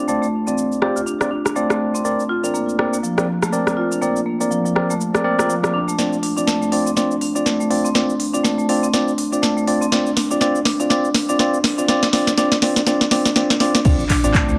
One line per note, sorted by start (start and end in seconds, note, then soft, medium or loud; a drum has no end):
0.07 0.19 D2 loud
0.07 0.21 A3 medium
0.07 0.26 C4 medium
0.07 0.26 F4 medium
0.07 0.26 D5 medium
0.07 cabasa medium
0.22 0.32 A3 medium
0.22 cabasa soft
0.47 0.73 A1 medium
0.47 0.57 C4 medium
0.47 0.80 C4 medium
0.47 0.80 F4 medium
0.47 0.80 D5 medium
0.47 cabasa medium
0.58 cabasa medium
0.71 0.90 D2 medium
0.71 cabasa soft
0.82 1.00 C4 medium
0.82 1.00 F4 medium
0.82 0.95 G4 medium
0.82 1.00 D5 medium
0.82 cross-stick medium
0.96 1.04 D2 medium
0.96 1.06 F4 medium
0.96 cabasa medium
1.06 1.20 D4 medium
1.06 cabasa medium
1.21 1.30 C4 medium
1.21 1.30 F4 medium
1.21 1.30 D5 medium
1.21 cross-stick medium
1.21 cabasa soft
1.31 1.44 D4 medium
1.45 1.55 D4 medium
1.45 cross-stick medium
1.45 cabasa medium
1.56 1.69 A3 medium
1.56 2.03 C4 medium
1.56 2.03 F4 medium
1.56 2.03 D5 loud
1.56 cabasa medium
1.70 1.79 A3 medium
1.70 cross-stick medium
1.70 cabasa soft
1.95 2.05 C4 medium
1.95 cabasa medium
2.05 2.16 D2 loud
2.05 2.23 C4 medium
2.05 2.23 A#4 medium
2.05 2.23 D5 medium
2.05 cabasa medium
2.20 cabasa soft
2.29 2.42 F4 loud
2.43 2.70 A1 medium
2.43 2.76 C4 medium
2.43 2.53 D4 medium
2.43 2.76 A#4 medium
2.43 2.76 D5 medium
2.43 cabasa medium
2.54 2.68 A#3 medium
2.54 cabasa medium
2.68 2.87 D2 medium
2.68 cabasa soft
2.79 2.92 A#3 medium
2.79 2.96 C4 medium
2.79 2.96 A#4 medium
2.79 2.96 D5 medium
2.79 cross-stick medium
2.93 3.01 D2 medium
2.93 3.02 A#3 medium
2.93 cabasa medium
3.03 3.16 F3 medium
3.03 cabasa medium
3.18 3.27 F3 medium
3.18 3.26 C4 medium
3.18 3.26 A#4 medium
3.18 3.26 D5 medium
3.18 cross-stick medium
3.18 cabasa soft
3.42 3.52 A3 medium
3.42 cross-stick medium
3.42 cabasa medium
3.52 3.99 C4 medium
3.52 3.99 A#4 medium
3.52 3.99 D5 loud
3.52 cabasa medium
3.67 3.75 D2 medium
3.67 cross-stick medium
3.67 cabasa soft
3.77 3.88 C2 loud
3.77 3.90 F4 loud
3.92 4.01 D4 medium
3.92 cabasa medium
4.01 4.13 D2 loud
4.01 4.15 A#3 medium
4.01 4.19 C4 medium
4.01 4.19 A#4 medium
4.01 4.20 D5 medium
4.01 cabasa medium
4.16 cabasa soft
4.26 4.39 A#3 medium
4.40 4.66 A1 medium
4.40 4.50 A#3 medium
4.40 4.73 C4 medium
4.40 4.73 A#4 medium
4.40 4.73 D5 medium
4.40 cabasa medium
4.51 4.64 F3 medium
4.51 cabasa medium
4.65 4.84 D2 medium
4.65 4.75 F3 medium
4.65 cabasa soft
4.75 4.93 C4 medium
4.75 4.93 A#4 medium
4.75 4.93 D5 medium
4.75 cross-stick medium
4.90 4.98 D2 medium
4.90 5.00 A3 medium
4.90 cabasa medium
5.01 cabasa medium
5.14 5.23 C4 medium
5.14 5.23 A#4 medium
5.14 5.23 D5 loud
5.14 cross-stick medium
5.14 cabasa soft
5.24 5.38 A#3 medium
5.24 5.37 C4 medium
5.24 5.37 A#4 medium
5.24 5.37 D5 loud
5.39 5.54 C4 medium
5.39 5.49 F4 medium
5.39 5.54 A#4 medium
5.39 5.54 D5 loud
5.39 cross-stick medium
5.39 cabasa medium
5.49 5.57 F3 medium
5.49 cabasa medium
5.63 5.78 C4 medium
5.63 5.78 A#4 medium
5.63 5.78 D5 medium
5.63 cross-stick medium
5.63 cabasa soft
5.73 5.90 D2 medium
5.73 5.82 D4 medium
5.88 5.96 D1 medium
5.88 5.98 A3 medium
5.88 cabasa medium
5.98 6.10 D2 loud
5.98 6.16 C4 medium
5.98 6.12 D4 medium
5.98 6.16 F4 medium
5.98 6.16 D5 medium
5.98 snare soft
5.98 cabasa medium
6.13 cabasa soft
6.23 6.36 D4 medium
6.23 open hi-hat medium
6.37 6.63 A1 medium
6.37 6.70 C4 medium
6.37 6.46 D4 medium
6.37 6.70 F4 medium
6.37 6.70 D5 medium
6.37 cabasa medium
6.47 6.60 A3 medium
6.47 snare soft
6.47 cabasa medium
6.61 6.80 D2 medium
6.61 6.71 A3 medium
6.61 cabasa soft
6.72 6.90 C4 medium
6.72 6.80 D4 medium
6.72 6.90 F4 medium
6.72 6.90 D5 medium
6.72 open hi-hat medium
6.86 6.95 D2 medium
6.86 6.95 C4 medium
6.86 cabasa medium
6.96 7.14 C4 medium
6.96 7.10 D4 medium
6.96 7.14 F4 medium
6.96 7.14 D5 medium
6.96 snare medium
6.96 cabasa medium
7.11 cabasa soft
7.21 7.34 D4 medium
7.21 open hi-hat medium
7.35 7.68 C4 medium
7.35 7.45 D4 medium
7.35 7.68 F4 medium
7.35 7.68 D5 medium
7.35 cabasa medium
7.46 7.59 A3 medium
7.46 snare medium
7.46 cabasa medium
7.60 7.69 D2 medium
7.60 7.70 A3 medium
7.60 cabasa soft
7.70 7.82 C2 loud
7.70 7.88 C4 medium
7.70 7.78 D4 medium
7.70 7.88 F4 medium
7.70 7.88 D5 medium
7.70 open hi-hat medium
7.85 7.94 C4 medium
7.85 cabasa medium
7.95 8.07 D2 loud
7.95 8.13 C4 medium
7.95 8.09 D4 medium
7.95 8.13 F4 medium
7.95 8.13 D5 medium
7.95 snare medium
7.95 cabasa medium
8.10 cabasa soft
8.19 8.32 D4 medium
8.19 open hi-hat medium
8.33 8.60 A1 medium
8.33 8.67 C4 medium
8.33 8.43 D4 medium
8.33 8.67 F4 medium
8.33 8.67 D5 medium
8.33 cabasa medium
8.44 8.57 A3 medium
8.44 snare medium
8.44 cabasa medium
8.58 8.77 D2 medium
8.58 8.68 A3 medium
8.58 cabasa soft
8.69 8.87 C4 medium
8.69 8.77 D4 medium
8.69 8.87 F4 medium
8.69 8.87 D5 medium
8.69 open hi-hat medium
8.83 8.92 D2 medium
8.83 8.92 C4 medium
8.83 cabasa medium
8.94 9.11 C4 medium
8.94 9.07 D4 medium
8.94 9.11 F4 medium
8.94 9.11 D5 medium
8.94 snare medium
8.94 cabasa medium
9.08 cabasa soft
9.18 9.31 D4 medium
9.18 open hi-hat medium
9.32 9.65 C4 medium
9.32 9.42 D4 medium
9.32 9.65 F4 medium
9.32 9.65 D5 medium
9.32 cabasa medium
9.42 9.56 A3 medium
9.42 snare medium
9.42 cabasa medium
9.57 9.66 A3 medium
9.57 cabasa soft
9.67 9.85 C4 medium
9.67 9.75 D4 medium
9.67 9.85 F4 medium
9.67 9.85 D5 medium
9.67 open hi-hat medium
9.81 9.90 C4 medium
9.81 cabasa medium
9.92 10.03 D2 loud
9.92 10.10 C4 medium
9.92 10.05 D4 medium
9.92 10.10 F4 medium
9.92 10.10 D5 medium
9.92 snare medium
9.92 cabasa medium
10.06 cabasa soft
10.16 10.29 D4 medium
10.16 snare medium
10.16 open hi-hat medium
10.30 10.57 A1 medium
10.30 10.40 C4 medium
10.30 10.39 D4 medium
10.30 10.40 F4 medium
10.30 10.40 D5 medium
10.30 cabasa medium
10.41 10.59 C4 medium
10.41 10.55 D4 medium
10.41 10.59 F4 medium
10.41 10.59 D5 medium
10.41 snare medium
10.41 cabasa medium
10.55 10.74 D2 medium
10.55 cabasa soft
10.65 10.78 D4 medium
10.65 snare medium
10.65 open hi-hat medium
10.80 10.88 D2 medium
10.80 10.89 C4 medium
10.80 10.89 D4 medium
10.80 10.89 F4 medium
10.80 10.89 D5 medium
10.80 cabasa medium
10.90 11.08 C4 medium
10.90 11.04 D4 medium
10.90 11.08 F4 medium
10.90 11.08 D5 medium
10.90 snare medium
10.90 cabasa medium
11.05 cabasa soft
11.14 11.28 D4 medium
11.14 snare medium
11.14 open hi-hat medium
11.29 11.38 C4 medium
11.29 11.38 D4 medium
11.29 11.38 F4 medium
11.29 11.38 D5 medium
11.29 cabasa medium
11.39 11.57 C4 medium
11.39 11.53 D4 medium
11.39 11.57 F4 medium
11.39 11.57 D5 medium
11.39 snare medium
11.39 cabasa medium
11.54 11.62 D2 medium
11.54 cabasa soft
11.64 11.75 C2 loud
11.64 11.77 D4 medium
11.64 snare medium
11.64 open hi-hat medium
11.78 11.87 C4 medium
11.78 11.87 D4 medium
11.78 11.87 F4 medium
11.78 11.87 D5 medium
11.78 cabasa medium
11.88 12.00 D2 loud
11.88 12.07 C4 medium
11.88 12.02 D4 medium
11.88 12.06 F4 medium
11.88 12.06 D5 loud
11.88 snare medium
11.88 cabasa medium
12.03 snare medium
12.03 cabasa soft
12.13 12.31 C4 medium
12.13 12.27 D4 medium
12.13 12.31 F4 medium
12.13 12.31 D5 loud
12.13 snare medium
12.13 open hi-hat loud
12.27 12.54 A1 medium
12.27 snare medium
12.27 cabasa medium
12.38 12.56 C4 medium
12.38 12.51 D4 medium
12.38 12.55 F4 medium
12.38 12.55 D5 loud
12.38 snare loud
12.38 cabasa medium
12.52 12.71 D2 medium
12.52 snare medium
12.52 cabasa soft
12.62 12.80 C4 medium
12.62 12.76 D4 medium
12.62 12.80 F4 medium
12.62 12.80 D5 loud
12.62 snare loud
12.62 open hi-hat medium
12.76 12.85 D2 medium
12.76 snare medium
12.76 cabasa medium
12.87 13.05 C4 medium
12.87 13.01 D4 medium
12.87 13.05 F4 medium
12.87 13.05 D5 loud
12.87 snare loud
12.87 cabasa medium
13.01 snare medium
13.01 cabasa soft
13.11 13.29 C4 medium
13.11 13.25 D4 medium
13.11 13.29 F4 medium
13.11 13.29 D5 loud
13.11 snare loud
13.11 open hi-hat medium
13.25 snare medium
13.25 cabasa medium
13.36 13.54 C4 medium
13.36 13.50 D4 medium
13.36 13.54 F4 medium
13.36 13.54 D5 loud
13.36 snare loud
13.36 cabasa medium
13.50 snare loud
13.50 cabasa soft
13.60 13.77 D2 medium
13.60 13.78 C4 medium
13.60 13.74 D4 medium
13.60 13.78 F4 medium
13.60 13.78 D5 loud
13.60 snare loud
13.60 open hi-hat medium
13.75 13.83 D1 medium
13.75 snare loud
13.75 cabasa medium
13.85 13.97 D2 loud
13.85 14.03 C4 medium
13.85 13.99 D4 medium
13.85 14.03 F4 medium
13.85 14.03 D5 medium
13.85 kick loud
13.85 crash loud
13.85 impact medium
13.85 cabasa medium
14.00 cabasa soft
14.10 14.23 D4 medium
14.10 kick medium
14.10 clap medium
14.10 open hi-hat medium
14.24 14.50 A1 medium
14.24 14.57 C4 medium
14.24 14.34 D4 medium
14.24 14.57 F4 medium
14.24 14.57 D5 medium
14.24 cabasa medium
14.34 14.47 A3 medium
14.34 kick loud
14.34 clap loud
14.34 cabasa medium
14.48 14.59 D2 medium
14.48 14.58 A3 medium
14.48 cabasa soft